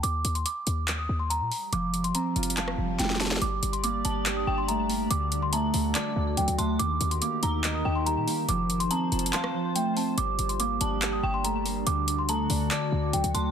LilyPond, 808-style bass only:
\new Staff \with { instrumentName = "808-style bass" } { \clef bass \time 4/4 \key g \minor \tempo 4 = 142 ees,8 ees,8 r8 ees,4 ees,8. bes,16 r8 | f,,4 r8 f,,4 f,,8 f,,4 | g,,8 g,,4 g,,4 g,,4. | d,4. d,8 r8 d,8 d,16 d,16 d,8 |
ees,8 ees,8 r8 ees,4 ees,8. bes,16 r8 | f,,4 r8 f,,8 r2 | g,,8 g,,4 g,,4 g,,4. | d,4. d,8 r8 d,8 d,16 d,16 d,8 | }